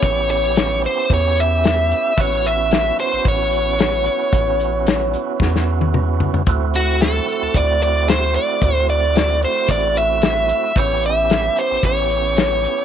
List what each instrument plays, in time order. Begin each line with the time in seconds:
Already playing: tonewheel organ B3 C#4 E4 G4, lead electric guitar C#5
0.02 analog synth bass A1, kick, closed hi-hat
0.29 lead electric guitar C#5, closed hi-hat
0.56 snare, closed hi-hat
0.84 lead electric guitar C5, closed hi-hat
1.10 analog synth bass E2, lead electric guitar C#5, kick, closed hi-hat
1.37 lead electric guitar E5, closed hi-hat
1.64 snare, closed hi-hat
1.91 closed hi-hat
2.16 analog synth bass A1, tonewheel organ B3 C#4 E4 F#4, kick, closed hi-hat
2.20 lead electric guitar C#5
2.45 lead electric guitar E5, closed hi-hat
2.71 snare, closed hi-hat
2.99 lead electric guitar C5, closed hi-hat
3.13 analog synth bass A1
3.25 analog synth bass A1, lead electric guitar C#5, kick, closed hi-hat
3.52 closed hi-hat
3.79 snare, closed hi-hat
4.06 closed hi-hat
4.32 analog synth bass A1, kick, closed hi-hat
4.60 closed hi-hat
4.87 snare, closed hi-hat
5.14 closed hi-hat
5.40 analog synth bass E2, kick, snare
5.56 snare
5.81 high tom
5.94 mid tom
6.20 floor tom
6.34 floor tom
6.47 analog synth bass D2, tonewheel organ A3 C4 E4 F#4, kick, closed hi-hat
6.74 lead electric guitar F#4, closed hi-hat
7.01 lead electric guitar A4, snare, closed hi-hat
7.28 closed hi-hat
7.42 analog synth bass D2
7.54 analog synth bass D2, lead electric guitar D5, kick, closed hi-hat
7.82 lead electric guitar D5, closed hi-hat
8.08 lead electric guitar C5, snare, closed hi-hat
8.35 lead electric guitar D5, closed hi-hat
8.62 analog synth bass D2, kick, closed hi-hat
8.89 lead electric guitar D5, closed hi-hat
9.16 snare, closed hi-hat
9.42 lead electric guitar C5, closed hi-hat
9.68 analog synth bass A1, lead electric guitar D5, kick, closed hi-hat
9.95 lead electric guitar E5, closed hi-hat
10.22 snare, closed hi-hat
10.49 closed hi-hat
10.76 analog synth bass A1, tonewheel organ B3 C#4 E4 G4, lead electric guitar C#5, kick, closed hi-hat
11.03 lead electric guitar E5, closed hi-hat
11.30 snare, closed hi-hat
11.56 lead electric guitar C5, closed hi-hat
11.71 analog synth bass A1
11.83 analog synth bass A1, lead electric guitar C#5, kick, closed hi-hat
12.10 closed hi-hat
12.37 snare, closed hi-hat
12.64 closed hi-hat